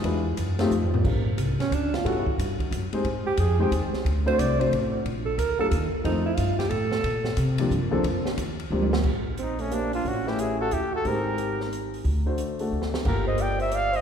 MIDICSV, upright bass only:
0, 0, Header, 1, 3, 480
1, 0, Start_track
1, 0, Key_signature, -2, "major"
1, 0, Tempo, 333519
1, 66, Time_signature, 3, 2, 24, 8
1, 20166, End_track
2, 0, Start_track
2, 0, Title_t, "Upright bass"
2, 0, Program_c, 0, 32
2, 59, Note_on_c, 0, 40, 93
2, 528, Note_off_c, 0, 40, 0
2, 538, Note_on_c, 0, 42, 90
2, 1000, Note_off_c, 0, 42, 0
2, 1009, Note_on_c, 0, 41, 107
2, 1483, Note_off_c, 0, 41, 0
2, 1500, Note_on_c, 0, 34, 86
2, 1969, Note_off_c, 0, 34, 0
2, 1979, Note_on_c, 0, 36, 87
2, 2270, Note_off_c, 0, 36, 0
2, 2459, Note_on_c, 0, 38, 92
2, 2928, Note_off_c, 0, 38, 0
2, 2948, Note_on_c, 0, 45, 85
2, 3235, Note_off_c, 0, 45, 0
2, 3427, Note_on_c, 0, 43, 90
2, 3892, Note_off_c, 0, 43, 0
2, 3905, Note_on_c, 0, 42, 97
2, 4193, Note_off_c, 0, 42, 0
2, 4379, Note_on_c, 0, 44, 91
2, 4670, Note_off_c, 0, 44, 0
2, 4856, Note_on_c, 0, 41, 94
2, 5326, Note_off_c, 0, 41, 0
2, 5344, Note_on_c, 0, 39, 94
2, 5632, Note_off_c, 0, 39, 0
2, 5824, Note_on_c, 0, 38, 89
2, 6291, Note_off_c, 0, 38, 0
2, 6309, Note_on_c, 0, 36, 90
2, 6773, Note_off_c, 0, 36, 0
2, 6785, Note_on_c, 0, 33, 90
2, 7251, Note_off_c, 0, 33, 0
2, 7273, Note_on_c, 0, 34, 90
2, 7729, Note_off_c, 0, 34, 0
2, 7738, Note_on_c, 0, 38, 90
2, 8029, Note_off_c, 0, 38, 0
2, 8216, Note_on_c, 0, 39, 101
2, 8508, Note_off_c, 0, 39, 0
2, 8694, Note_on_c, 0, 41, 94
2, 9165, Note_off_c, 0, 41, 0
2, 9176, Note_on_c, 0, 43, 92
2, 9636, Note_off_c, 0, 43, 0
2, 9644, Note_on_c, 0, 45, 97
2, 10115, Note_off_c, 0, 45, 0
2, 10123, Note_on_c, 0, 46, 90
2, 10596, Note_off_c, 0, 46, 0
2, 10605, Note_on_c, 0, 48, 93
2, 11075, Note_off_c, 0, 48, 0
2, 11084, Note_on_c, 0, 43, 105
2, 11241, Note_off_c, 0, 43, 0
2, 11241, Note_on_c, 0, 41, 55
2, 11397, Note_off_c, 0, 41, 0
2, 11406, Note_on_c, 0, 38, 72
2, 11553, Note_off_c, 0, 38, 0
2, 11562, Note_on_c, 0, 41, 100
2, 11859, Note_off_c, 0, 41, 0
2, 12048, Note_on_c, 0, 39, 95
2, 12521, Note_off_c, 0, 39, 0
2, 12528, Note_on_c, 0, 38, 101
2, 13002, Note_off_c, 0, 38, 0
2, 13010, Note_on_c, 0, 34, 80
2, 14401, Note_off_c, 0, 34, 0
2, 14461, Note_on_c, 0, 33, 84
2, 15366, Note_off_c, 0, 33, 0
2, 15424, Note_on_c, 0, 39, 74
2, 15871, Note_off_c, 0, 39, 0
2, 15899, Note_on_c, 0, 32, 85
2, 17286, Note_off_c, 0, 32, 0
2, 17333, Note_on_c, 0, 38, 86
2, 18244, Note_off_c, 0, 38, 0
2, 18299, Note_on_c, 0, 38, 72
2, 18750, Note_off_c, 0, 38, 0
2, 18781, Note_on_c, 0, 31, 84
2, 20166, Note_off_c, 0, 31, 0
2, 20166, End_track
3, 0, Start_track
3, 0, Title_t, "Muted upright bass strokes"
3, 2288, Note_on_c, 9, 29, 40
3, 2432, Note_off_c, 9, 29, 0
3, 3255, Note_on_c, 9, 29, 39
3, 3399, Note_off_c, 9, 29, 0
3, 4212, Note_on_c, 9, 29, 38
3, 4356, Note_off_c, 9, 29, 0
3, 4696, Note_on_c, 9, 29, 41
3, 4840, Note_off_c, 9, 29, 0
3, 5657, Note_on_c, 9, 29, 40
3, 5801, Note_off_c, 9, 29, 0
3, 8063, Note_on_c, 9, 29, 38
3, 8206, Note_off_c, 9, 29, 0
3, 8532, Note_on_c, 9, 29, 42
3, 8676, Note_off_c, 9, 29, 0
3, 11883, Note_on_c, 9, 29, 42
3, 12027, Note_off_c, 9, 29, 0
3, 20166, End_track
0, 0, End_of_file